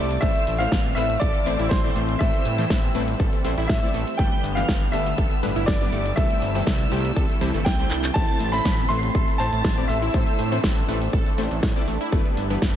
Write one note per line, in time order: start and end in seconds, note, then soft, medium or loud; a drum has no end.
0.00 0.18 C2 medium
0.00 0.20 C3 medium
0.00 0.19 G3 medium
0.00 2.17 A3 medium
0.00 0.20 E4 medium
0.00 0.23 D5 loud
0.00 0.23 D6 loud
0.11 closed hi-hat soft
0.11 shaker soft
0.21 0.33 A1 loud
0.21 4.15 E3 medium
0.21 0.27 A3 loud
0.21 0.57 A3 medium
0.21 0.57 C4 medium
0.21 4.15 C4 medium
0.21 0.57 E4 medium
0.21 0.27 A4 medium
0.21 0.57 C5 medium
0.21 0.60 E5 loud
0.21 0.61 E6 loud
0.21 kick loud
0.21 closed hi-hat medium
0.21 shaker soft
0.35 closed hi-hat soft
0.35 shaker soft
0.47 0.67 A1 medium
0.47 open hi-hat loud
0.47 shaker medium
0.58 0.67 E3 medium
0.58 0.66 A3 medium
0.58 0.66 C4 medium
0.58 0.67 E4 medium
0.58 0.66 E4 medium
0.58 0.66 C5 loud
0.58 0.97 F5 loud
0.58 0.97 F6 loud
0.58 closed hi-hat medium
0.58 shaker soft
0.72 0.92 A1 loud
0.72 0.79 B3 medium
0.72 0.79 B4 medium
0.72 kick loud
0.72 snare loud
0.72 closed hi-hat medium
0.72 shaker soft
0.86 shaker soft
0.95 1.17 A1 loud
0.95 1.01 A3 medium
0.95 1.04 A3 medium
0.95 1.04 C4 medium
0.95 1.04 E4 medium
0.95 1.01 A4 medium
0.95 1.04 B4 loud
0.95 1.19 E5 loud
0.95 1.19 E6 loud
0.95 open hi-hat medium
0.95 shaker medium
1.10 closed hi-hat soft
1.10 shaker soft
1.20 1.32 A1 medium
1.20 1.29 A4 loud
1.20 1.72 D5 loud
1.20 1.29 A5 medium
1.20 1.72 D6 loud
1.20 kick loud
1.20 closed hi-hat medium
1.20 shaker soft
1.34 closed hi-hat soft
1.34 shaker soft
1.46 1.57 A1 medium
1.46 1.51 A2 medium
1.46 1.53 A3 loud
1.46 1.51 A3 medium
1.46 1.53 C4 medium
1.46 1.53 E4 medium
1.46 1.53 C5 loud
1.46 open hi-hat loud
1.46 shaker medium
1.59 1.69 A1 medium
1.59 1.69 E4 loud
1.59 1.69 E5 medium
1.59 closed hi-hat soft
1.59 shaker soft
1.69 1.91 A1 medium
1.69 2.21 C5 medium
1.69 2.21 C6 loud
1.69 kick loud
1.69 snare loud
1.69 closed hi-hat medium
1.69 shaker soft
1.84 1.90 A3 loud
1.84 1.90 C4 medium
1.84 1.90 E4 medium
1.84 1.90 D5 loud
1.84 closed hi-hat soft
1.84 shaker soft
1.96 2.16 A1 loud
1.96 2.00 A3 medium
1.96 2.00 A4 medium
1.96 open hi-hat medium
1.96 shaker medium
2.09 closed hi-hat soft
2.09 shaker soft
2.19 2.31 A2 loud
2.19 4.17 G3 medium
2.19 2.25 A3 loud
2.19 2.55 A3 medium
2.19 2.55 C4 medium
2.19 2.55 E4 medium
2.19 2.25 A4 medium
2.19 2.55 C5 medium
2.19 3.15 E5 medium
2.19 3.15 E6 loud
2.19 kick loud
2.19 closed hi-hat medium
2.19 shaker soft
2.34 closed hi-hat soft
2.34 shaker soft
2.45 2.66 A2 medium
2.45 open hi-hat loud
2.45 shaker medium
2.58 2.65 E3 medium
2.58 2.65 A3 medium
2.58 2.65 C4 medium
2.58 2.65 E4 medium
2.58 2.65 C5 loud
2.58 closed hi-hat medium
2.58 shaker soft
2.70 2.90 A1 medium
2.70 2.77 B3 medium
2.70 2.77 B4 medium
2.70 kick loud
2.70 snare loud
2.70 closed hi-hat medium
2.70 shaker soft
2.84 shaker soft
2.95 3.15 A1 loud
2.95 2.99 A3 medium
2.95 3.02 A3 medium
2.95 3.02 C4 medium
2.95 3.02 E4 medium
2.95 2.99 A4 medium
2.95 3.02 B4 loud
2.95 open hi-hat medium
2.95 shaker medium
3.08 closed hi-hat medium
3.08 shaker soft
3.20 3.30 A1 loud
3.20 3.27 A4 loud
3.20 3.27 A5 medium
3.20 kick loud
3.20 closed hi-hat medium
3.20 shaker soft
3.33 closed hi-hat soft
3.33 shaker soft
3.45 3.55 A1 loud
3.45 3.49 A2 medium
3.45 3.49 A3 medium
3.45 3.52 A3 loud
3.45 3.52 C4 medium
3.45 3.52 E4 medium
3.45 3.52 C5 loud
3.45 open hi-hat loud
3.45 shaker medium
3.58 3.67 A1 medium
3.58 3.68 E4 loud
3.58 3.68 E5 medium
3.58 closed hi-hat medium
3.58 shaker soft
3.68 3.80 A2 loud
3.68 4.20 E5 medium
3.68 4.20 E6 medium
3.68 kick loud
3.68 snare loud
3.68 closed hi-hat medium
3.68 shaker soft
3.82 3.89 A3 loud
3.82 3.89 C4 medium
3.82 3.89 E4 medium
3.82 3.89 D5 loud
3.82 closed hi-hat soft
3.82 shaker soft
3.94 4.05 A1 medium
3.94 3.99 A3 medium
3.94 3.99 A4 medium
3.94 open hi-hat medium
3.94 shaker medium
4.07 closed hi-hat medium
4.07 shaker soft
4.17 4.29 G1 loud
4.17 6.15 D3 medium
4.17 4.54 G3 medium
4.17 8.12 G3 medium
4.17 4.23 A3 medium
4.17 4.54 B3 medium
4.17 6.15 B3 medium
4.17 4.54 D4 medium
4.17 4.23 A4 medium
4.17 4.54 B4 loud
4.17 4.57 G5 medium
4.17 4.57 G6 loud
4.17 kick loud
4.17 closed hi-hat medium
4.17 shaker soft
4.32 closed hi-hat soft
4.32 shaker soft
4.44 4.64 G1 medium
4.44 open hi-hat loud
4.44 shaker medium
4.55 4.63 E3 medium
4.55 4.63 G3 medium
4.55 4.63 B3 medium
4.55 4.63 D4 medium
4.55 4.63 E4 medium
4.55 4.63 B4 medium
4.55 4.90 F5 medium
4.55 4.90 F6 loud
4.55 closed hi-hat medium
4.55 shaker soft
4.69 4.89 G1 loud
4.69 4.76 B3 medium
4.69 4.76 B4 medium
4.69 kick loud
4.69 snare loud
4.69 closed hi-hat medium
4.69 shaker soft
4.82 shaker soft
4.92 5.14 G1 loud
4.92 5.00 G3 medium
4.92 4.98 A3 medium
4.92 5.00 B3 medium
4.92 5.00 D4 medium
4.92 5.00 A4 loud
4.92 4.98 A4 medium
4.92 5.69 E5 medium
4.92 5.69 E6 loud
4.92 open hi-hat medium
4.92 shaker medium
5.06 closed hi-hat medium
5.06 shaker soft
5.18 5.29 G1 medium
5.18 5.25 A4 loud
5.18 5.25 A5 medium
5.18 kick loud
5.18 closed hi-hat medium
5.18 shaker soft
5.31 closed hi-hat soft
5.31 shaker soft
5.43 5.54 G1 medium
5.43 5.47 A2 medium
5.43 5.50 G3 loud
5.43 5.47 A3 medium
5.43 5.50 B3 medium
5.43 5.50 D4 medium
5.43 5.50 B4 loud
5.43 open hi-hat loud
5.43 shaker medium
5.56 5.65 G1 medium
5.56 5.66 E4 loud
5.56 5.66 E5 medium
5.56 closed hi-hat medium
5.56 shaker soft
5.66 5.88 G1 medium
5.66 6.13 D5 medium
5.66 6.13 D6 medium
5.66 kick loud
5.66 snare loud
5.66 closed hi-hat medium
5.66 shaker soft
5.81 5.87 G3 loud
5.81 5.87 B3 medium
5.81 5.87 D4 medium
5.81 5.87 D5 loud
5.81 closed hi-hat soft
5.81 shaker soft
5.92 6.13 G1 loud
5.92 5.97 A3 medium
5.92 5.97 A4 medium
5.92 open hi-hat medium
5.92 shaker medium
6.06 closed hi-hat medium
6.06 shaker soft
6.16 6.28 C2 loud
6.16 8.14 C3 medium
6.16 6.52 G3 medium
6.16 6.22 A3 loud
6.16 12.09 A3 medium
6.16 6.52 C4 medium
6.16 6.52 E4 medium
6.16 10.10 E4 medium
6.16 6.22 A4 medium
6.16 6.52 A4 medium
6.16 7.70 E5 loud
6.16 7.70 E6 loud
6.16 kick loud
6.16 closed hi-hat medium
6.16 shaker soft
6.30 closed hi-hat soft
6.30 shaker soft
6.42 6.62 G1 medium
6.42 open hi-hat loud
6.42 shaker medium
6.55 6.62 E3 medium
6.55 6.61 G3 medium
6.55 6.62 C4 medium
6.55 6.62 E4 medium
6.55 6.61 E4 medium
6.55 6.62 A4 loud
6.55 closed hi-hat medium
6.55 shaker soft
6.67 6.87 C2 medium
6.67 6.74 B3 medium
6.67 6.74 B4 medium
6.67 kick loud
6.67 snare loud
6.67 closed hi-hat medium
6.67 shaker soft
6.80 closed hi-hat soft
6.80 shaker soft
6.92 7.12 C2 loud
6.92 6.99 G3 medium
6.92 6.96 A3 medium
6.92 6.99 C4 medium
6.92 6.99 E4 medium
6.92 6.99 G4 loud
6.92 6.96 A4 medium
6.92 open hi-hat medium
6.92 shaker medium
7.05 closed hi-hat medium
7.05 shaker soft
7.16 7.27 C2 loud
7.16 7.24 A4 loud
7.16 7.24 A5 medium
7.16 kick loud
7.16 closed hi-hat medium
7.16 shaker soft
7.29 closed hi-hat soft
7.29 shaker soft
7.41 7.52 C2 medium
7.41 7.49 E3 medium
7.41 7.48 G3 loud
7.41 7.48 C4 loud
7.41 7.48 E4 loud
7.41 7.49 E4 medium
7.41 7.48 A4 loud
7.41 open hi-hat loud
7.41 shaker medium
7.54 7.64 G1 loud
7.54 7.64 A3 medium
7.54 7.64 A4 medium
7.54 closed hi-hat medium
7.54 shaker soft
7.65 7.86 C2 medium
7.65 8.17 G5 loud
7.65 8.16 G6 loud
7.65 kick loud
7.65 snare loud
7.65 closed hi-hat medium
7.65 shaker soft
7.79 7.85 G3 loud
7.79 7.85 C4 medium
7.79 7.85 E4 medium
7.79 7.85 C5 loud
7.79 closed hi-hat soft
7.79 shaker soft
7.91 8.11 C2 medium
7.91 7.95 D4 medium
7.91 7.95 D5 medium
7.91 clap medium
7.91 open hi-hat medium
7.91 shaker medium
8.04 clap loud
8.04 closed hi-hat medium
8.04 shaker soft
8.14 8.26 A1 loud
8.14 8.50 A3 medium
8.14 8.20 A3 loud
8.14 8.50 C4 medium
8.14 12.08 C4 medium
8.14 8.50 E4 medium
8.14 8.20 A4 medium
8.14 8.50 C5 loud
8.14 8.54 A5 loud
8.14 8.54 A6 loud
8.14 kick loud
8.14 closed hi-hat medium
8.14 shaker soft
8.29 closed hi-hat soft
8.29 shaker soft
8.40 8.61 A1 medium
8.40 open hi-hat loud
8.40 shaker medium
8.52 8.60 E3 medium
8.52 8.60 A3 medium
8.52 8.60 C4 medium
8.52 8.60 E4 medium
8.52 8.60 C5 loud
8.52 8.90 B5 loud
8.52 8.90 B6 loud
8.52 closed hi-hat medium
8.52 shaker soft
8.65 8.85 A1 loud
8.65 8.73 B3 medium
8.65 8.73 B4 medium
8.65 kick loud
8.65 snare loud
8.65 closed hi-hat medium
8.65 shaker soft
8.79 shaker soft
8.89 9.10 A1 loud
8.89 8.94 A3 medium
8.89 8.97 A3 medium
8.89 8.97 C4 medium
8.89 8.97 E4 medium
8.89 8.94 A4 medium
8.89 8.97 B4 loud
8.89 9.40 C6 loud
8.89 9.41 C7 loud
8.89 open hi-hat medium
8.89 shaker medium
9.03 closed hi-hat medium
9.03 shaker soft
9.15 9.25 A1 medium
9.15 9.22 A4 loud
9.15 9.22 A5 medium
9.15 kick loud
9.15 closed hi-hat medium
9.15 shaker soft
9.28 closed hi-hat soft
9.28 shaker soft
9.38 9.50 A1 loud
9.38 9.44 A2 medium
9.38 9.44 A3 medium
9.38 9.47 A3 loud
9.38 9.47 C4 medium
9.38 9.47 E4 medium
9.38 9.47 C5 loud
9.38 9.90 A5 loud
9.38 9.90 A6 loud
9.38 open hi-hat loud
9.38 shaker medium
9.53 9.62 A1 medium
9.53 closed hi-hat medium
9.53 shaker soft
9.64 9.85 A1 medium
9.64 kick loud
9.64 snare loud
9.64 closed hi-hat medium
9.64 shaker soft
9.78 9.84 A3 loud
9.78 9.84 C4 medium
9.78 9.84 E4 medium
9.78 9.84 D5 loud
9.78 closed hi-hat soft
9.78 shaker soft
9.88 10.09 A1 loud
9.88 9.94 A3 medium
9.88 9.94 A4 medium
9.88 11.33 E5 medium
9.88 11.33 E6 loud
9.88 open hi-hat medium
9.88 shaker medium
10.02 10.12 E4 loud
10.02 10.12 E5 medium
10.02 closed hi-hat medium
10.02 shaker soft
10.14 10.25 A2 loud
10.14 10.18 A3 medium
10.14 10.49 A3 medium
10.14 10.49 C4 medium
10.14 12.76 D4 medium
10.14 10.49 E4 medium
10.14 10.18 A4 medium
10.14 10.49 C5 medium
10.14 kick loud
10.14 closed hi-hat medium
10.14 shaker soft
10.27 closed hi-hat soft
10.27 shaker soft
10.39 10.59 A2 medium
10.39 open hi-hat loud
10.39 shaker medium
10.52 10.58 E3 medium
10.52 10.58 A3 medium
10.52 10.58 C4 medium
10.52 10.58 E4 medium
10.52 10.58 C5 loud
10.52 closed hi-hat medium
10.52 shaker soft
10.64 10.84 A1 medium
10.64 10.71 B3 medium
10.64 10.71 B4 medium
10.64 kick loud
10.64 snare loud
10.64 closed hi-hat medium
10.64 shaker soft
10.78 shaker soft
10.88 11.09 A1 loud
10.88 10.93 A3 medium
10.88 10.95 A3 medium
10.88 10.96 C4 medium
10.88 10.95 E4 medium
10.88 10.93 A4 medium
10.88 10.95 B4 loud
10.88 open hi-hat medium
10.88 shaker medium
11.02 closed hi-hat medium
11.02 shaker soft
11.13 11.24 A1 loud
11.13 11.21 A4 loud
11.13 11.21 A5 medium
11.13 kick loud
11.13 closed hi-hat medium
11.13 shaker soft
11.26 closed hi-hat soft
11.26 shaker soft
11.38 11.49 A1 loud
11.38 11.42 A2 medium
11.38 11.42 A3 medium
11.38 11.45 A3 loud
11.38 11.45 C4 medium
11.38 11.45 E4 medium
11.38 11.45 C5 loud
11.38 open hi-hat loud
11.38 shaker medium
11.51 11.61 A1 medium
11.51 closed hi-hat medium
11.51 shaker soft
11.63 11.73 A2 loud
11.63 kick loud
11.63 snare loud
11.63 closed hi-hat medium
11.63 shaker soft
11.76 11.82 A3 loud
11.76 11.82 C4 medium
11.76 11.82 E4 medium
11.76 11.82 D5 loud
11.76 closed hi-hat soft
11.76 shaker soft
11.88 11.98 A1 medium
11.88 11.92 A3 medium
11.88 11.92 A4 medium
11.88 open hi-hat loud
11.88 shaker medium
12.01 12.10 E4 loud
12.01 12.10 E5 medium
12.01 closed hi-hat medium
12.01 shaker soft
12.12 12.23 G1 loud
12.12 12.76 G3 medium
12.12 12.47 G3 medium
12.12 12.17 A3 loud
12.12 12.76 B3 medium
12.12 12.47 B3 medium
12.12 12.47 D4 medium
12.12 12.17 A4 medium
12.12 12.47 B4 loud
12.12 kick loud
12.12 closed hi-hat medium
12.12 shaker soft
12.26 closed hi-hat soft
12.26 shaker soft
12.37 12.57 G1 medium
12.37 open hi-hat loud
12.37 shaker medium
12.50 12.57 E3 medium
12.50 12.57 G3 medium
12.50 12.57 B3 medium
12.50 12.57 D4 medium
12.50 12.57 E4 medium
12.50 12.57 B4 medium
12.50 closed hi-hat medium
12.50 shaker soft
12.62 12.76 G1 loud
12.62 12.69 B3 medium
12.62 12.69 B4 medium
12.62 kick loud
12.62 snare loud
12.62 closed hi-hat medium
12.62 shaker soft